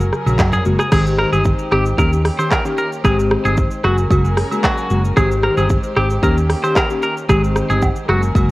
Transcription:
Already playing: F#3 C#4 G#4 A#4
0.00 shaker
0.13 cross-stick, shaker
0.26 A#1 C#3 G#3 A#3 F#4, high agogo, shaker
0.39 F#2, kick, cross-stick, clap, low woodblock, shaker
0.52 G#4, mid tom, shaker
0.65 F#1 C#3 G#3 A#3 F#4, shaker
0.79 G#4, cross-stick, shaker
0.92 G#1 D#3 G#3 C4 D#4 G4 G#4 C5, kick, cross-stick, crash, high agogo, shaker
1.07 shaker
1.18 A#4, cross-stick
1.32 G1 D#3 G#3 C4 G4 G#4, high agogo, shaker
1.45 kick, shaker
1.59 shaker
1.71 G#1 D#3 G#3 C4 G4, cross-stick, high agogo
1.86 shaker
1.98 D#2 D#3 A#3 C#4 G4 A#4, kick, high agogo, shaker
2.13 shaker
2.25 cross-stick, open hi-hat
2.39 D#3 A#3 C#4 G4 C5, high agogo, shaker
2.51 A#4, kick, cross-stick, clap, low woodblock, shaker
2.65 D#3 A#3 C#4 G4, shaker
2.78 A#4, shaker
2.93 shaker
3.04 G#1 D#3 G#3 C4 D#4 G4 G#4 C5, kick, cross-stick, high agogo, shaker
3.19 shaker
3.31 cross-stick
3.45 G1 D#3 G#3 C4 G4 G#4, high agogo, shaker
3.57 kick, shaker
3.71 shaker
3.84 F#1 C#3 F#3 G#3 A#3 C#4 F#4 G#4 A#4, cross-stick, high agogo
3.98 shaker
4.10 F#1 C#3 G#3 A#3 F#4, kick, high agogo, shaker
4.25 shaker
4.37 cross-stick, open hi-hat
4.51 C#3 G#3 A#3 F#4, high agogo, shaker
4.64 F#4, kick, cross-stick, clap, low woodblock, shaker
4.78 shaker
4.90 F#1 C#3 G#3 A#3 F#4, shaker
5.05 shaker
5.17 G#1 D#3 G#3 C4 D#4 G4 G#4 C5, kick, cross-stick, high agogo, shaker
5.32 shaker
5.43 A#4, cross-stick
5.57 G1 D#3 G#3 C4 G4 G#4, high agogo, shaker
5.69 kick, shaker
5.83 shaker
5.96 G#1 D#3 G#3 C4 G4, cross-stick, high agogo
6.10 shaker
6.23 D#2 D#3 A#3 C#4 G4 A#4, kick, high agogo, shaker
6.38 shaker
6.50 cross-stick, open hi-hat
6.64 D#3 A#3 C#4 G4 C5, high agogo, shaker
6.76 A#4, kick, cross-stick, clap, low woodblock, shaker
6.90 D#3 A#3 C#4 G4, shaker
7.03 A#4, shaker
7.17 shaker
7.29 G#1 D#3 G#3 C4 D#4 G4 G#4 C5, kick, cross-stick, high agogo, shaker
7.44 shaker
7.56 cross-stick, shaker
7.70 G1 D#3 G#3 C4 G4 G#4, high agogo, shaker
7.82 kick, low woodblock, shaker
7.96 shaker
8.09 F#1 C#3 F#3 G#3 A#3 C#4 F#4 G#4 A#4, cross-stick, high agogo
8.23 shaker
8.35 F#1 C#3 G#3 A#3 F#4, kick, high agogo, shaker

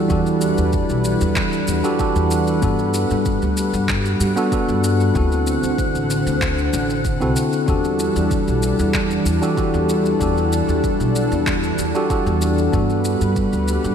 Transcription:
Already playing: E3 G3 D4 F#4 G4 A4 F#5
0.08 E2 D4 F#4 G4 A4 B4, kick, shaker
0.26 shaker
0.41 shaker
0.58 E2, shaker
0.73 kick, shaker
0.89 B1, shaker
1.04 shaker
1.21 E2, shaker
1.36 kick, clap, shaker
1.53 shaker
1.67 E2, shaker
1.84 D4 F#4 G4 A4, shaker
1.99 D4 F#4 G4 A4, kick, shaker
2.16 E2, shaker
2.31 shaker
2.47 shaker
2.61 G2 G3 B3 D4 F#4 A4, kick, shaker
2.79 shaker
2.94 shaker
3.10 G2, shaker
3.25 kick, shaker
3.42 D2, shaker
3.57 shaker
3.73 G2, shaker
3.89 kick, clap, shaker
4.05 shaker
4.20 G2, shaker
4.36 B3 D4 F#4 A4, shaker
4.52 B3 D4 F#4 A4, kick, shaker
4.68 G2, shaker
4.84 shaker
5.00 shaker
5.14 D2 D3 C4 E4 F#4 A4, kick, shaker
5.32 shaker
5.47 shaker
5.63 D2, shaker
5.78 kick, shaker
5.95 A1, shaker
6.10 shaker
6.26 D2, shaker
6.42 kick, clap, shaker
6.58 shaker
6.73 A1, shaker
6.90 shaker
7.05 kick, shaker
7.21 C2 C4 E4 F#4 A4, shaker
7.36 shaker
7.53 shaker
7.67 E2 E3 G3 D4 F#4 G4 A4, kick, shaker
7.84 shaker
7.99 shaker
8.16 E2, shaker
8.31 kick, shaker
8.48 B1, shaker
8.63 shaker
8.79 E2, shaker
8.94 kick, clap, shaker
9.11 shaker
9.26 E2, shaker
9.42 D4 F#4 G4 A4, shaker
9.57 D4 F#4 G4 A4, kick, shaker
9.74 E2, shaker
9.89 shaker
10.06 shaker
10.20 E2 D4 F#4 G4 A4, kick, shaker
10.37 shaker
10.53 shaker
10.68 E2, shaker
10.84 kick, shaker
11.00 B1, shaker
11.16 shaker
11.32 E2, shaker
11.47 kick, clap, shaker
11.63 shaker
11.78 E2, shaker
11.95 D4 F#4 G4 A4, shaker
12.10 D4 F#4 G4 A4, kick, shaker
12.26 E2, shaker
12.42 shaker
12.58 shaker
12.72 G2 G3 B3 D4 F#4 A4 B4 F#5, kick, shaker
12.90 shaker
13.05 shaker
13.21 G2, shaker
13.36 kick, shaker
13.53 D2, shaker
13.68 shaker
13.84 G2, shaker

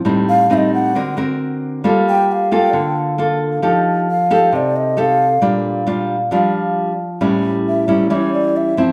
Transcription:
0.05 A2 G3 C4 D#4
0.29 F5
0.50 G3 C4 D#4 E5
0.57 D#5
0.74 F#5
0.95 D3 C4 F#4 A#4
1.17 C4 F#4 A#4
1.84 G3 A#3 F4 A4
2.09 G5
2.32 F5
2.52 A#3 F4 A4 G#5
2.56 G5
2.73 D3
3.18 A#3 F4 A4
3.62 F3 D#4 G4 A4
4.10 F5
4.30 D#4 G4 A4
4.52 C3 D5
4.76 D#5
4.97 D#4 G4 A4 F5
5.41 A#2 G3 D4 F4
5.87 G3 D4 F4
6.31 F3 G3 D4 F4
7.21 A2 G3 C#4 E4
7.68 E5
7.88 G3 C#4 E4
8.10 E3 G3 C#4 E4 D5
8.15 C#5
8.33 D5
8.57 E5
8.77 F3 C4 E4

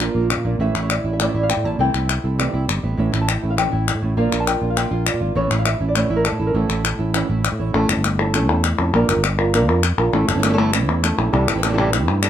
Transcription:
Already playing: A#2 A#3 D4 F4 A#4
0.00 F3 A#3 D4 F4, clap
0.15 A#1 A#3
0.30 C#3, muted nylon-string guitar stroke, clap
0.37 A#2
0.45 A#1 A#2 A#3 D4 F4
0.59 A1 A2 E3 A3 C#4 E4 E5
0.75 A1 A3 C#4 E4, clap
0.83 C#5
0.90 D5, muted nylon-string guitar stroke, clap
1.04 A1 A3 C#4 E4
1.13 E5
1.20 A2 E3 A3 C#4 E4 D5, clap
1.34 A1 A3 C#4 E4
1.43 F5
1.50 A2 G5, muted nylon-string guitar stroke, clap
1.57 A2
1.64 A1 A#2 A3 C#4 E4 A5
1.79 C2 C3 E3 A3 C4 E4 A4 E5 G5
1.94 C2 A3 C4 E4, clap
2.09 E5, muted nylon-string guitar stroke, clap
2.24 C2 A3 C4 E4 A4
2.38 C3 E3 G3 A3 C4 E4, clap
2.54 C2 A3 C4 E4
2.68 G1 C4, muted nylon-string guitar stroke, clap
2.83 A1 A3 B3 C4 E4
2.97 A1 A2 E3 A3 C#4 E4 E5
3.12 A1 A3 C#4 E4, clap
3.21 A5
3.28 G5, muted nylon-string guitar stroke, clap
3.42 A1 A3 C#4 E4
3.50 F5
3.57 A2 E3 A3 C#4 E4 G5, clap
3.72 A1 A3 C#4 E4
3.87 muted nylon-string guitar stroke, clap
3.95 A2
4.02 A1 A2 A3 C#4 E4
4.17 A#1 F3 A#3 D4 F4 A#4 D5 F5
4.31 A#1 A#3 D4 F4, clap
4.40 A5
4.47 G5, muted nylon-string guitar stroke, clap
4.61 A#1 A#3 D4 F4
4.70 F5
4.76 F3 A#3 D4 F4 G5, clap
4.91 A#1 A#3 D4 F4
5.05 D5, muted nylon-string guitar stroke, clap
5.14 A#2
5.20 G#1 A#3 D4 F4 F5
5.35 A1 A2 E3 A3 C#4 E4 C#5
5.50 A1 A3 C#4 E4, clap
5.59 F5
5.65 E5, muted nylon-string guitar stroke, clap
5.80 A1 A3 C#4 E4
5.89 D5
5.95 A2 E3 A3 C#4 E4 C#5, clap
6.10 A1 A3 C#4 E4
6.16 A#4
6.24 A4, muted nylon-string guitar stroke, clap
6.32 A2
6.39 A1 A3 C#4 E4
6.47 A#4
6.54 A1 A2 E3 A3 C#4 E4 A4
6.69 A1 A3 C#4 E4, clap
6.84 muted nylon-string guitar stroke, clap
6.99 A1 A3 C#4 E4
7.14 A2 E3 A3 C#4 E4, clap
7.29 A1 A3 C#4 E4
7.44 C#5, muted nylon-string guitar stroke, clap
7.52 A2
7.59 A1 A3 C#4 E4 C#5
7.73 A1 E3 A3 C#4 E4 A4
7.89 G1 C#4 E4, clap
7.97 G1
8.04 muted nylon-string guitar stroke, clap
8.19 C#4 E4 A4
8.34 E3 A3 C#4 E4 A4, clap
8.49 E2 C#4 E4 A4
8.64 muted nylon-string guitar stroke, clap
8.79 F2 C#4 E4 A4
8.93 A#1 F3 A#3 D4 F4 A#4, clap
9.09 G1 D4 F4 A#4, clap
9.17 G1
9.24 muted nylon-string guitar stroke, clap
9.38 D4 F4 A#4
9.53 F3 A#3 D4 F4 A#4, clap
9.68 F2 D4 F4 A#4
9.83 muted nylon-string guitar stroke, clap
9.98 A#1 D4 F4 A#4
10.12 A1 E3 A3 C#4 E4 A4, muted nylon-string guitar stroke, clap
10.28 G1 E3 A3 C#4 E4 A4, clap
10.34 G1 E3 A3 C#4 E4
10.39 E3 A3 C#4 E4
10.43 E3 A3 C#4 E4 A4, clap
10.49 A3 C#4 E4 A4
10.53 A3 C#4 E4 A4
10.58 E3 A3 C#4 E4 A4
10.73 E3 A3 C#4 E4, muted nylon-string guitar stroke, clap
10.88 E2
11.02 A3 C#4 E4 A4, muted nylon-string guitar stroke, clap
11.18 A#1 A3 C#4 E4 A4
11.32 C2 C3 E3 G3 C4 E4 A4, muted nylon-string guitar stroke, clap
11.48 A1 E3 G3 A3 C4 E4, clap
11.54 A1 E3 A3 C4 E4
11.58 E3 A3 C4 E4
11.63 C3 E3 G3 A3 C4 E4 A4, clap
11.69 E3 G3 C4 E4 A4
11.73 E3 G3 C4 E4 A4
11.78 C3 E3 G3 C4 E4 A4
11.92 C3 E3 A3 C4 E4, muted nylon-string guitar stroke, clap
12.08 G2
12.22 G3 C4 E4 A4, muted nylon-string guitar stroke, clap

